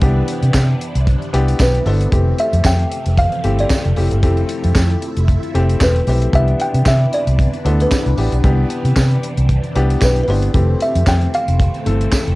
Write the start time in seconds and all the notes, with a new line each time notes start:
Already playing: C3 E3 B3 D4
0.02 C2 B3 D4 E4 G4, kick, closed hi-hat
0.28 closed hi-hat
0.43 C3, closed hi-hat
0.54 C3, kick, snare, clap, tambourine
0.81 closed hi-hat
0.95 C2, closed hi-hat
1.07 kick, closed hi-hat
1.22 closed hi-hat
1.33 C2 B3 D4 E4 G4, closed hi-hat
1.48 closed hi-hat
1.59 B1 B4, kick, snare, clap, tambourine
1.74 closed hi-hat
1.85 G1 B3 D4 E4 A4 C5, open hi-hat
2.01 closed hi-hat
2.12 F1 E3 F3 A3 C4 E4 G4, kick, closed hi-hat
2.39 E5, closed hi-hat
2.53 F2, closed hi-hat
2.65 F2 G5, kick, snare, clap, tambourine
2.79 closed hi-hat
2.92 closed hi-hat
3.06 F1, closed hi-hat
3.17 F5, kick, closed hi-hat
3.32 closed hi-hat
3.44 G1 A3 C4 E4 G4, closed hi-hat
3.59 D5, closed hi-hat
3.70 kick, snare, clap, tambourine
3.85 F1, closed hi-hat
3.96 F1 A3 C4 E4 G4, open hi-hat
4.11 G1, closed hi-hat
4.23 F1 A3 C4 E4 G4, kick, closed hi-hat
4.37 closed hi-hat
4.49 closed hi-hat
4.64 F2, closed hi-hat
4.75 F2, kick, snare, clap, tambourine
4.90 closed hi-hat
5.02 closed hi-hat
5.17 F1, closed hi-hat
5.28 kick, closed hi-hat
5.43 closed hi-hat
5.54 F1 A3 C4 E4 G4, closed hi-hat
5.69 closed hi-hat
5.80 E1 B4, kick, snare, clap, tambourine
5.96 closed hi-hat
6.07 B1 A3 C4 E4 G4 C5, open hi-hat
6.22 closed hi-hat
6.33 C2 C3 E3 B3 D4 E4 G4 E5, kick, closed hi-hat
6.48 closed hi-hat
6.60 G5, closed hi-hat
6.74 C3, closed hi-hat
6.86 C3 E5, kick, snare, clap, tambourine
7.13 D5, closed hi-hat
7.27 C2, closed hi-hat
7.39 kick, closed hi-hat
7.53 closed hi-hat
7.64 D2 B3 D4 E4 A4 C5, closed hi-hat
7.80 B4, closed hi-hat
7.91 kick, snare, clap, tambourine
8.06 C2, closed hi-hat
8.17 A1 B3 D4 E4 G4, open hi-hat
8.32 B1, closed hi-hat
8.43 C2 B3 D4 E4 G4, kick, closed hi-hat
8.70 closed hi-hat
8.85 C3, closed hi-hat
8.96 C3, kick, snare, clap, tambourine
9.11 closed hi-hat
9.23 closed hi-hat
9.37 C2, closed hi-hat
9.49 kick, closed hi-hat
9.64 closed hi-hat
9.75 C2 B3 D4 E4 G4, closed hi-hat
9.90 closed hi-hat
10.01 B1 B4, kick, snare, clap, tambourine
10.16 closed hi-hat
10.23 B4
10.28 G1 B3 D4 E4 G4 C5, open hi-hat
10.42 closed hi-hat
10.54 F1 E3 A3 C4 E4 G4, kick, closed hi-hat
10.81 E5, closed hi-hat
10.95 F2, closed hi-hat
11.07 F2 G5, kick, snare, clap, tambourine
11.21 closed hi-hat
11.34 F5, closed hi-hat
11.48 F1, closed hi-hat
11.60 kick, closed hi-hat
11.74 closed hi-hat
11.86 G1 E3 A3 C4 A4, closed hi-hat
12.01 closed hi-hat
12.12 kick, snare, clap, tambourine
12.27 F1, closed hi-hat